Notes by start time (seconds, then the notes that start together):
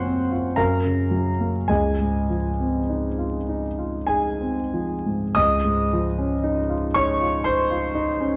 Already playing: F#2 C#3 F#3 A#3 C4 F4 C5 C#5 F#5 G#5 C6 C#6
0.06 C4
0.32 F4
0.56 F#2 A#4 F5 A#5
0.85 C#3
1.11 F#3
1.40 A#3
1.68 C#2 G#4 D#5 G#5
2.00 G#2
2.30 F3
2.60 C4
2.90 D#4
3.18 F4
3.49 D#4
3.78 F4
4.07 D#4 G#4 G#5
4.41 C4
4.73 F3
5.06 G#2
5.35 C#2 D#5 D#6
5.65 G#2
5.93 F3
6.19 C#4
6.43 D#4
6.70 F4
6.94 D#4 C#5 C#6
7.21 F4
7.44 D#4 C5 C6
7.71 F4
7.95 D#4
8.20 C#4